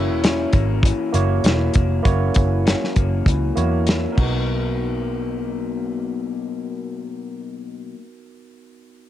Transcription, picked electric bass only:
Already playing: F#1
0.10 E1
0.54 G#1
1.14 F#1
1.44 E1
1.76 F1
2.05 F#1
2.36 F#1
2.96 F#1
3.26 C#2
3.57 E2
4.18 B1

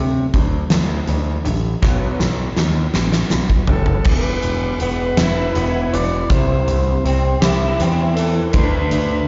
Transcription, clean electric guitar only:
Already playing: D3 F#3
0.34 D3 F#3
0.71 D3 F#3
1.08 D3 F#3
1.45 D3 F#3
1.82 B2 F#3 B3
2.19 B2 F#3
2.58 B2 F#3
2.94 B2 F#3
3.31 B2 F#3
3.70 B2 F#3
4.07 E2
4.81 B3
5.18 E4
5.56 B3
5.93 E3
6.31 C3
7.06 C4
7.43 E4
7.81 C4
8.19 E3
8.55 D3

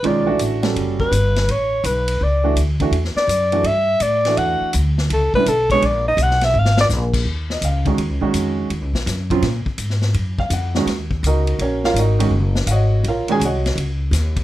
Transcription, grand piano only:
0.04 D#3 G#3 C#4 F4
0.26 E3 A3 D4 F#4
0.63 G3 C#4 F#4 A4
2.44 E3 A3 D4 F#4
2.81 E3 A3 D4 F#4
3.52 E3 A3 D4 F#4
4.26 E3 A3 D4 F#4
5.36 D3 G3 C#4 E4
5.72 G#3 B3 D4 G#4
7.51 D#5
7.65 F5
7.86 D#3 G#3 C#4 F#4
8.21 D#3 G#3 C#4 F#4
9.31 C#3 F#3 C4 F4
10.40 F5
10.53 F#5
10.76 D#3 G#3 C#4 F#4
11.27 D#4 F#4 A#4 D#5
11.61 C#4 F#4 A#4 C#5
11.85 F4 A#4 C#5 F5
11.99 D#4 F#4 A#4 D#5
12.19 D#3 G#3 C#4 F#4
12.67 F5 F#5
12.71 F#4 C#5 D#5
13.08 F4 A#4 C#5 F5
13.29 D#3 G#3 C#4 F#4 G#4 G#5
13.45 F#4 C#5 D#5 F#5

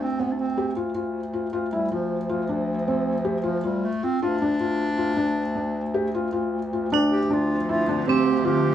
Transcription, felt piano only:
0.19 C4
0.58 G4
0.76 F4
0.95 F4
1.33 F4
1.53 F4
1.73 E4
1.91 F4
2.29 F4
2.49 D4
2.88 C4
3.25 G4
3.43 F4
3.64 F4
4.03 F4
4.22 F4
4.42 D4
4.60 F4
4.98 F4
5.17 D4
5.55 D4
5.94 G4
6.15 F4
6.32 F4
6.73 F4
6.92 D4
7.30 D4
7.69 E4
7.89 D4
8.08 C4
8.45 F4

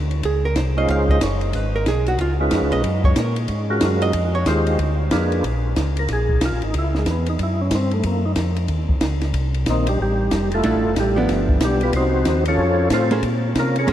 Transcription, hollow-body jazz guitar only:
0.25 G#4
0.45 A#4
0.57 C5
0.78 D#5
0.90 F5
1.11 D#5
1.23 C#5
1.43 C5
1.55 B4
1.76 A#4
1.88 G#4
2.08 F#4
2.21 F4
2.73 D#5
3.05 C#5
3.18 A#4
4.02 D#5
4.35 C#5
4.48 C5
10.64 A3 D4 E4
11.16 F3 B3 D4
13.11 A#3 C#4 G#4 C5
13.87 A#3 C#4 G#4 C5

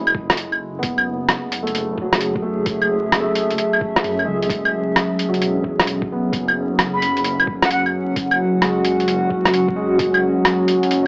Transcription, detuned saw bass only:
Already playing: F#1
1.75 F#1
2.66 F#1
4.04 F#2
4.27 C#2
4.50 F#1
5.41 E1
6.33 F#1
7.17 F#1
9.07 F#1
9.99 F#1

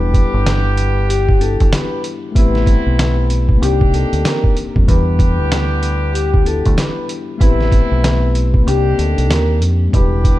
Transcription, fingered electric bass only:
Already playing: E1
0.34 G1
1.61 G1
2.36 A1
2.87 B1
3.62 C2
4.13 D2
4.76 F2
4.88 E2
5.39 D2
6.66 D2
7.41 A1
7.92 B1
8.67 C2
8.99 D2
9.18 C2
9.30 D#2
9.62 F2
9.93 E1

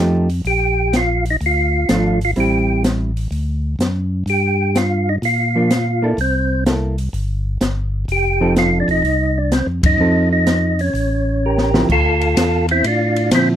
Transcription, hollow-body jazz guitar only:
0.00 F3 A3 D#4 G4
1.89 F3 A3 D4
2.36 G3 C4 E4
5.56 F3 A#3 D4
6.02 A#3 E4 A4
6.66 A#3 E4 A4
8.41 F3 C4 D#4 A4
10.00 F3 C4 D#4 A4
11.74 D3 F3 C4 E4
13.34 D3 F3 C4 E4

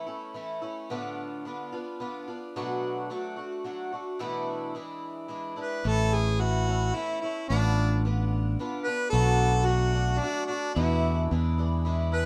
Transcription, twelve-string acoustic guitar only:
0.07 A3 C#4 E4
0.34 E3 A3 C#4 E4
0.62 A3 C#4 E4
0.90 A2 D3 B3 D4 F4
1.45 D3 B3 D4 F4
1.72 B3 D4 F4
2.00 D3 B3 D4 F4
2.28 B3 D4 F4
2.56 B2 F#3 A3 D4 F#4
3.10 F#3 A3 D4 F#4
3.36 A3 D4 F#4
3.64 F#3 A3 D4 F#4
3.92 A3 D4 F#4
4.19 E2 B2 E3 A3 D4 E4
4.75 E3 G#3 D4 E4
5.28 E3 G#3 D4 E4
5.56 E3 G#3 D4 E4
5.84 A2 E3 A3 C#4 E4
6.39 E3 A3 C#4 E4
6.67 A3 C#4 E4
6.94 E3 A3 C#4 E4
7.23 A3 C#4 E4
7.50 A2 D3 B3 D4 F4
8.05 D3 B3 D4 F4
8.59 D3 B3 D4 F4
8.86 B3 D4 F4
9.13 B2 F#3 A3 D4 F#4
9.67 F#3 A3 D4 F#4
9.93 A3 D4 F#4
10.22 F#3 A3 D4 F#4
10.49 A3 D4 F#4
10.75 E2 B2 E3 A3 D4 E4
11.31 E3 G#3 D4 E4
11.58 E3 G#3 D4 E4
11.85 E3 G#3 D4 E4
12.12 E3 G#3 D4 E4

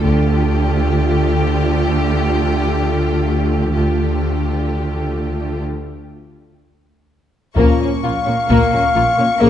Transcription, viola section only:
0.04 A3 F4
3.74 A3 F4
7.56 A#3
7.80 A#3
8.03 A#3
8.27 A#3
8.49 A#3
8.73 A#3
8.95 A#3
9.18 A#3
9.41 A#3

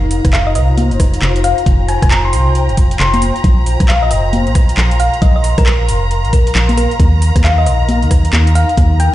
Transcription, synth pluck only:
0.33 F5
0.47 D#5
0.55 D#5
1.44 F5
1.89 G#5
2.03 G#5
2.11 A#5
2.25 C6
2.33 C6
3.00 C6
3.14 C6
3.89 F5
4.02 D#5
4.11 D#5
5.00 F5
5.22 D#5
5.36 D#5
5.58 A#4
5.66 A#4
6.33 A#4
6.77 A#4
7.44 F5
7.58 D#5
7.66 D#5
8.55 F5
9.00 G5

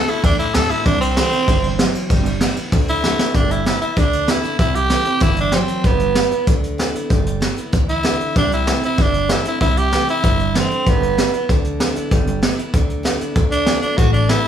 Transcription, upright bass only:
0.07 muted upright bass stroke
0.23 E2
0.40 muted upright bass stroke
0.54 D2
0.70 muted upright bass stroke
0.86 C2
1.33 muted upright bass stroke
1.48 G1
1.95 muted upright bass stroke
2.10 G1
2.57 muted upright bass stroke
2.72 D2
3.19 muted upright bass stroke
3.34 G1
3.82 muted upright bass stroke
3.97 D2
4.43 muted upright bass stroke
4.59 C2
5.05 muted upright bass stroke
5.21 G1
5.69 muted upright bass stroke
5.84 G1
6.31 muted upright bass stroke
6.47 D2
6.95 muted upright bass stroke
7.10 G1
7.58 muted upright bass stroke
7.73 D2
8.21 muted upright bass stroke
8.36 C2
8.98 G1
9.61 C2
10.09 muted upright bass stroke
10.24 G1
10.71 muted upright bass stroke
10.87 G1
11.33 muted upright bass stroke
11.49 D2
11.97 muted upright bass stroke
12.11 G1
12.58 muted upright bass stroke
12.74 D2
13.36 D2
13.82 muted upright bass stroke
13.98 A1

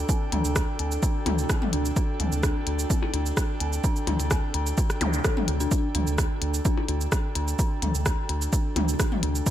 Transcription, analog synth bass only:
0.32 D2
0.45 D2
0.79 D2
1.26 D2
1.73 D2
2.20 D2
2.32 D2
2.67 D2
3.14 D2
3.60 D2
4.07 D2
4.20 D2
4.54 D2
5.01 D2
5.48 D2
5.95 D2
6.07 D2
6.42 D2
6.89 D2
7.36 D2
7.82 D2
7.95 D2
8.29 D2
8.76 D2
9.23 D2

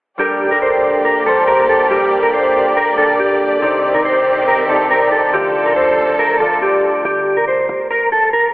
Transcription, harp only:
0.18 G3 D4 A4 A#4
0.50 G3 D4 A4 A#4
1.26 G3 D4 A4 C5
1.90 G3 D4 A4 A#4
2.97 G3 D4 A4 A#4
3.61 C3 C4 D#4 D5
3.93 C3 C4 D#4 D5
4.68 C3 C4 D#4 D5
5.32 D3 A3 F4 D5
6.39 D3 A3 F4 D5

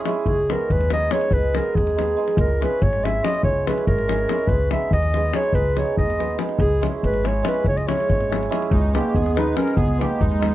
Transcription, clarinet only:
0.27 G#4
0.52 A#4
0.72 B4
0.93 D#5
1.12 C#5
1.33 B4
1.56 A#4
1.75 G#4
2.39 A#4
2.63 B4
2.82 C#5
3.04 E5
3.25 D#5
3.44 C#5
3.67 B4
3.87 A#4
4.48 B4
4.72 E5
4.93 D#5
5.36 C#5
5.55 B4
5.78 C#5
5.98 D#5
6.61 G#4
7.05 B4
7.27 C#5
7.48 B4
7.68 C#5
7.77 D#5
7.87 C#5
8.72 G#3
8.97 A#3
9.16 B3
9.38 D#4
9.57 C#4
9.77 B3
10.02 A#3
10.22 G#3

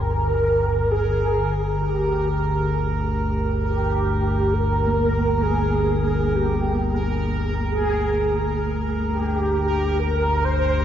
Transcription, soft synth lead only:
0.01 A#4
0.91 G#4
1.81 G4
3.64 G4
4.53 A#4
5.42 G#4
6.35 G4
7.70 G#4
9.10 G4
9.99 A#4
10.44 C5

